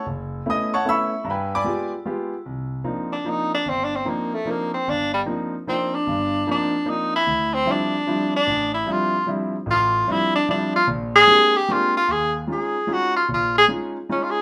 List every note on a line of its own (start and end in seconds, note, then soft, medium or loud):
0.06 0.40 F#1 medium
0.46 0.73 A3 medium
0.46 0.73 B3 medium
0.46 0.73 C#4 medium
0.46 0.73 E4 medium
0.46 0.73 D#5 medium
0.46 0.73 D#6 loud
0.74 0.86 C#5 medium
0.74 0.87 F#5 medium
0.74 0.86 A5 medium
0.74 0.86 C#6 loud
0.85 1.12 A3 medium
0.85 1.13 B3 medium
0.85 1.13 C#4 medium
0.85 1.13 E4 medium
0.85 1.24 E6 loud
0.89 1.25 E5 medium
0.89 1.25 B5 medium
0.89 1.25 C#6 medium
1.24 1.59 G2 medium
1.24 1.28 A#5 medium
1.30 1.53 B4 medium
1.30 1.53 G5 medium
1.30 1.53 G#5 medium
1.30 1.53 B5 medium
1.55 1.91 D5 medium
1.55 1.91 G#5 medium
1.55 1.91 B5 medium
1.55 1.90 D6 loud
1.64 1.92 G#3 medium
1.64 1.93 B3 medium
1.64 1.93 F4 medium
1.64 1.93 G4 medium
2.06 2.33 G#3 medium
2.06 2.33 B3 medium
2.06 2.33 F4 medium
2.06 2.33 G4 medium
2.46 2.80 C2 medium
2.84 3.12 F3 medium
2.84 3.12 A#3 soft
2.84 3.12 C4 medium
2.84 3.12 D4 soft
2.84 3.12 D#4 medium
3.13 3.31 D4 medium
3.25 3.52 F3 medium
3.25 3.53 A#3 medium
3.25 3.53 C4 soft
3.25 3.53 D4 soft
3.25 3.53 D#4 medium
3.30 3.54 D#4 medium
3.55 3.71 D4 medium
3.65 4.00 G1 medium
3.69 3.86 C4 medium
3.84 3.98 D4 medium
3.96 4.10 C4 medium
4.05 4.33 F3 medium
4.05 4.33 A#3 medium
4.05 4.36 A#3 medium
4.05 4.33 C4 medium
4.05 4.33 D4 medium
4.05 4.33 D#4 medium
4.34 4.52 A3 medium
4.45 4.73 F3 medium
4.45 4.73 A#3 medium
4.45 4.73 C4 soft
4.45 4.73 D4 soft
4.45 4.73 D#4 medium
4.50 4.74 A#3 medium
4.74 4.91 C4 medium
4.87 5.21 G1 medium
4.87 5.13 D4 loud
5.14 5.22 G3 medium
5.25 5.53 F3 medium
5.25 5.53 A#3 medium
5.25 5.54 C4 medium
5.25 5.54 D4 soft
5.25 5.54 D#4 medium
5.67 5.94 F3 medium
5.67 5.94 A#3 soft
5.67 5.94 C4 soft
5.67 5.97 C4 medium
5.67 5.95 D4 medium
5.67 5.95 D#4 medium
5.95 6.48 D4 medium
6.06 6.41 G1 medium
6.06 6.41 G2 medium
6.47 6.74 F3 medium
6.47 6.74 A#3 medium
6.47 6.74 C4 medium
6.47 6.74 D4 medium
6.47 6.74 D#4 medium
6.51 6.91 D4 medium
6.85 7.13 F3 medium
6.85 7.14 A#3 medium
6.85 7.13 C4 soft
6.85 7.14 D4 soft
6.85 7.14 D#4 medium
6.90 7.14 D#4 medium
7.16 7.56 E4 medium
7.26 7.61 D2 medium
7.54 7.73 C4 loud
7.66 7.93 F3 medium
7.66 7.94 G3 medium
7.66 7.94 C4 medium
7.66 7.94 D4 medium
7.66 7.94 E4 medium
7.72 8.35 D4 medium
8.07 8.34 F3 medium
8.07 8.34 G3 medium
8.07 8.34 C4 medium
8.07 8.35 D4 medium
8.07 8.35 E4 medium
8.36 8.72 D4 loud
8.47 8.82 A1 medium
8.74 8.93 E4 medium
8.86 9.14 F3 medium
8.86 9.14 G3 soft
8.86 9.14 C4 soft
8.86 9.14 D4 medium
8.86 9.15 E4 medium
8.92 9.29 F4 loud
9.26 9.54 F3 medium
9.26 9.54 G3 medium
9.26 9.55 C4 medium
9.26 9.55 D4 medium
9.26 9.55 E4 medium
9.66 10.01 A1 medium
9.66 10.02 A2 medium
9.71 10.13 F4 loud
10.07 10.35 F3 medium
10.07 10.35 G3 medium
10.07 10.35 C4 medium
10.07 10.35 D4 medium
10.07 10.35 E4 medium
10.11 10.35 E4 loud
10.36 10.48 D4 loud
10.49 10.75 F3 medium
10.49 10.75 G3 medium
10.49 10.75 C4 medium
10.49 10.76 D4 medium
10.49 10.73 D4 medium
10.49 10.76 E4 medium
10.76 10.88 F4 loud
10.87 11.22 A#1 medium
11.16 11.58 G#4 loud
11.27 11.55 G#3 medium
11.27 11.55 A#3 medium
11.27 11.55 C4 medium
11.27 11.55 D4 medium
11.27 11.55 G4 medium
11.57 11.74 G4 loud
11.69 11.96 G#3 medium
11.69 11.96 A#3 medium
11.69 11.96 C4 medium
11.69 11.96 D4 medium
11.69 11.96 F4 medium
11.69 11.96 G4 medium
11.97 12.13 F4 medium
12.08 12.43 D#2 medium
12.08 12.36 G#4 medium
12.47 12.75 G#3 medium
12.47 12.75 C#4 soft
12.47 12.75 D#4 soft
12.47 12.76 F4 medium
12.52 12.95 G#4 medium
12.87 13.15 G#3 medium
12.87 13.15 C#4 medium
12.87 13.15 D#4 medium
12.87 13.15 F4 medium
12.93 13.16 F#4 medium
13.16 13.28 F4 medium
13.29 13.63 A#1 medium
13.34 13.55 F4 medium
13.58 13.65 G#4 loud
13.68 13.96 G#3 medium
13.68 13.96 C#4 medium
13.68 13.96 D#4 medium
13.68 13.96 F4 medium
14.09 14.36 G#3 medium
14.09 14.36 C#4 medium
14.09 14.25 C#4 medium
14.09 14.36 D#4 medium
14.09 14.37 F4 medium
14.23 14.32 F4 medium
14.31 14.42 G#4 medium